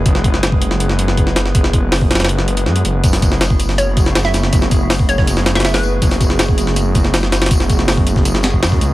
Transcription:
<<
  \new Staff \with { instrumentName = "Synth pluck" } { \time 4/4 \key fis \minor \tempo 4 = 161 r1 | r1 | r2 cis''8 r8. e''8 r16 | r4. cis''16 cis''16 r8. e''16 e''16 b'8.~ |
b'8. r2. r16 | r1 | }
  \new Staff \with { instrumentName = "Ambient pad" } { \time 4/4 \key fis \minor <gis b e' gis' b'>4. <gis b e' gis' b'>2~ <gis b e' gis' b'>8 | <gis b e' gis' b'>4. <gis b e' gis' b'>2~ <gis b e' gis' b'>8 | <a b e' fis' gis'>4. <a b e' fis' gis'>2~ <a b e' fis' gis'>8 | <a b e' fis' gis'>4. <a b e' fis' gis'>2~ <a b e' fis' gis'>8 |
<a b e' fis' gis'>4. <a b e' fis' gis'>2~ <a b e' fis' gis'>8 | <a b e' fis' gis'>4. <a b e' fis' gis'>2~ <a b e' fis' gis'>8 | }
  \new Staff \with { instrumentName = "Detuned saw bass" } { \clef bass \time 4/4 \key fis \minor fis,,2.~ fis,,8 fis,,8 | fis,,4. fis,,4. fis,8 fis,,8 | fis,,2.~ fis,,8 fis,,8 | fis,,4. fis,,2 fis,,8 |
fis,,2.~ fis,,8 fis,,8 | fis,,4. fis,,4. fis,8 cis,8 | }
  \new DrumStaff \with { instrumentName = "Drums" } \drummode { \time 4/4 <hh bd>16 sn16 <hh bd>16 sn16 <hh sn>16 bd16 hh16 sn16 hh16 sn16 hh16 sn16 <hh bd>16 sn16 <hh sn>16 sn16 | <hh bd>16 sn16 <hh bd>8 <hho sn>16 bd16 <hh sn>32 <hh sn>32 <hh sn>32 <hh sn>32 hh16 sn16 hh16 hh16 sn16 hh16 hh8 | <hh bd tamb>16 <hh sn>16 <hh bd tamb>16 sn16 <hh sn tamb>16 bd16 <hh tamb>16 sn16 <hh tamb>8 <hh bd tamb>16 sn16 <hh sn tamb>16 sn16 <hh sn tamb>16 sn16 | <hh bd tamb>16 sn16 <hh bd tamb>8 <hho sn tamb>16 bd16 <hh tamb>16 <bd sn>16 <hh tamb>16 sn16 <hh sn tamb>16 <hh sn>32 <hh sn>32 <hh sn tamb>16 <hho sn>16 tamb8 |
<hh bd tamb>16 <hh sn>16 <hh bd tamb>16 sn16 <hh sn tamb>16 bd16 <hh tamb>16 sn16 <hh tamb>8 <hh bd tamb>16 sn16 <hh sn tamb>16 sn16 <hh sn tamb>16 <hh sn>32 <hh sn>32 | <hh bd tamb>16 sn16 <hh bd tamb>16 sn16 <hho sn tamb>16 bd16 <hh tamb>16 <bd sn>16 <hh tamb>16 sn16 <hh sn tamb>16 bd16 <hh sn tamb>16 <bd sn>16 <hh tamb>8 | }
>>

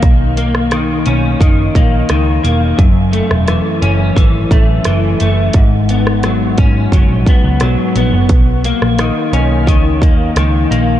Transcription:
<<
  \new Staff \with { instrumentName = "Clean electric guitar" } { \time 4/4 \key b \major \tempo 4 = 87 <dis ais cis'>8 ais8 dis8 cis'8 dis8 ais8 dis8 ais8 | fis,8 a8 e8 cis'8 e8 a8 e8 a8 | gis,8 b8 fis8 cis'8 fis8 b8 fis8 b8 | r8 ais8 dis8 cis'8 dis8 ais8 dis8 ais8 | }
  \new Staff \with { instrumentName = "Picked electric bass" } { \clef bass \time 4/4 \key b \major b,,4. b,,8 fis,,8 ais,,8 cis,8 e,,8 | fis,,8. e,,8 r16 fis,,8 gis,,8 a,,8 fis,,8 fis,,8 | gis,,4. gis,,8 fis,,16 ais,,16 r16 cis,16 b,,16 r16 ais,,16 fis,,16 | b,,8. ais,,8 r16 b,,8 cis,8 dis,8 cis,8 ais,,8 | }
  \new DrumStaff \with { instrumentName = "Drums" } \drummode { \time 4/4 <hh bd>8 hh16 ss16 <hh ss>8 hh8 <hh bd>8 <hh bd>8 <hh ss>8 hh8 | <hh bd>8 hh16 ss16 <hh ss>8 hh8 <hh bd>8 <hh bd>8 <hh ss>8 hh8 | <hh bd>8 hh16 ss16 <hh ss>8 <hh bd>8 <hh bd>8 <hh bd>8 <hh ss>8 hh8 | <hh bd>8 hh16 ss16 <hh ss>8 hh8 <hh bd>8 <hh bd>8 <hh ss>8 hh8 | }
>>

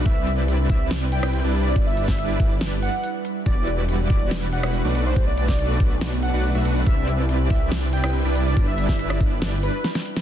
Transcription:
<<
  \new Staff \with { instrumentName = "Soft synth lead" } { \time 4/4 \key g \major \tempo 4 = 141 e''8 r4 e''8 r8 g''8 r8. d''16~ | d''16 e''8 e''8. r4 fis''8 r4 | d''8 r4 d''8 r8 fis''8 r8. c''16~ | c''16 d''8 d''8. r4 fis''8 r4 |
e''8 r4 e''8 r8 g''8 r8. d''16~ | d''16 e''8 e''8. r4 b'8 r4 | }
  \new Staff \with { instrumentName = "Supersaw synth" } { \time 4/4 \key g \major <g c' e' b' d''>4. <g c' e' b' d''>4~ <g c' e' b' d''>16 <g c' e' b' g''>8 <g d' e' b' d''>8. | <g d' e' b' d''>4. r2 r8 | <g e' fis' b' d''>4. <g e' fis' b' d''>4~ <g e' fis' b' d''>16 <g e' fis' b' fis''>8 <a d' fis' b' d''>8. | a4. <a d' fis' b' d''>4~ <a d' fis' b' d''>16 <a d' fis' b' d''>8 <a d' fis' b' e''>16 <a d' fis' b' fis''>8 |
<g d''>4. <g c'>4~ <g c'>16 <g c' e' b' g''>8 <g d' e' b' d''>8. | <g d' e' b' d''>4. d'4~ d'16 r4 r16 | }
  \new Staff \with { instrumentName = "Analog synth pad" } { \time 4/4 \key g \major <c d' e' b'>2.~ <c d' e' b'>8 <g b'>8~ | <g b'>1 | <e g d' fis'>2.~ <e g d' fis'>8 <a b>8~ | <a b>1 |
<c e' b'>2.~ <c e' b'>8 <g b'>8~ | <g b'>1 | }
  \new Staff \with { instrumentName = "Detuned saw bass" } { \clef bass \time 4/4 \key g \major c,4. c,4~ c,16 c,8 c,8. | g,,4. g,,4~ g,,16 r4 r16 | e,,4. e,,4~ e,,16 e,,8 b,,8. | b,,4. b,,4~ b,,16 b,,8 b,,16 b,,8 |
c,4. c,4~ c,16 c,8 c,8. | g,,4. g,,4~ g,,16 r4 r16 | }
  \new DrumStaff \with { instrumentName = "Drums" } \drummode { \time 4/4 <hh bd>8 hh8 hh8 <hh bd>8 <hh sn>8 hh16 ss16 hh8 hh8 | <hh bd>8 hh16 <bd sn>16 hh8 <hh bd>8 <hh sn>8 hh8 hh8 hh8 | <hh bd>8 hh8 hh8 <hh bd>8 <hh sn>8 hh16 ss16 hh8 hh8 | <hh bd>8 hh16 <bd sn>16 hh8 <hh bd>8 <hh sn>8 hh8 hh8 hh8 |
<hh bd>8 hh8 hh8 <hh bd>8 <hh sn>8 hh16 ss16 hh8 hh8 | <hh bd>8 hh16 <bd sn>16 hh16 ss16 <hh bd>8 <hh sn>8 hh8 <hh sn>16 sn16 hh16 sn16 | }
>>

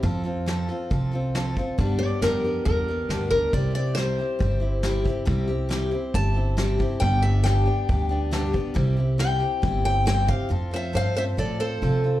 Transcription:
<<
  \new Staff \with { instrumentName = "Steel-string acoustic guitar" } { \time 4/4 \key c \major \tempo 4 = 138 r1 | r8 d''8 bes'4 bes'4. bes'8 | d''8 d''8 c''2. | r2 a''2 |
g''8 e''8 g''2 r4 | r4 g''4. g''8 g''8 f''8 | r8 <c'' e''>8 <c'' f''>8 <c'' e''>8 <a' d''>8 <a' c''>4. | }
  \new Staff \with { instrumentName = "Steel-string acoustic guitar" } { \time 4/4 \key c \major <f c' f' a'>8 <c' f' a'>8 <f c' f' a'>8 <c' f' a'>8 <f c' f' a'>8 <c' f' a'>8 <f c' f' a'>8 <c' f' a'>8 | <g, d g b d' g'>8 <g b d' g'>8 <g, d g b d' g'>8 <g b d' g'>8 <g b d' g'>8 <g b d' g'>8 <g, d g b d' g'>8 <g b d' g'>8 | <c g c' e' g'>8 <c' e' g'>8 <c g c' e' g'>8 <c' e' g'>8 <g c' e' g'>8 <c' e' g'>8 <c g c' e' g'>8 <c' e' g'>8 | <c g c' e' g'>8 <c' e' g'>8 <c g c' e' g'>8 <c' e' g'>8 <g c' e' g'>8 <c' e' g'>8 <c g c' e' g'>8 <c' e' g'>8 |
<g, d g b d' g'>8 <g b d' g'>8 <g, d g b d' g'>8 <g b d' g'>8 <g b d' g'>8 <g b d' g'>8 <g, d g b d' g'>8 <g b d' g'>8 | <c g c' e' g'>8 <c' e' g'>8 <c g c' e' g'>8 <c' e' g'>8 <g c' e' g'>8 <c' e' g'>8 <c g c' e' g'>8 <c' e' g'>8 | <f c' f' a'>8 <c' f' a'>8 <f c' f' a'>8 <c' f' a'>8 <f c' f' a'>8 <c' f' a'>8 <f c' f' a'>8 <c' f' a'>8 | }
  \new Staff \with { instrumentName = "Upright bass" } { \clef bass \time 4/4 \key c \major f,2 c,2 | g,4 f,4 e,4 d,4 | c,2 g,,2 | c,2 g,,2 |
g,,2 d,2 | c,2 g,,2 | f,4 g,4 a,4 c4 | }
  \new DrumStaff \with { instrumentName = "Drums" } \drummode { \time 4/4 <hho bd>4 <hho sn>4 <hho bd>4 <hho sn>8 bd8 | <hho bd>4 sn4 <hho bd>4 <hho sn>8 bd8 | <hho bd>4 sn4 <hho bd>4 sn8 bd8 | <hho bd>4 sn4 <hho bd>4 sn8 bd8 |
<hho bd>4 <hho sn>4 <hho bd>4 sn8 bd8 | <hho bd>4 sn4 <hho bd>4 sn8 bd8 | r4 r4 r4 r4 | }
>>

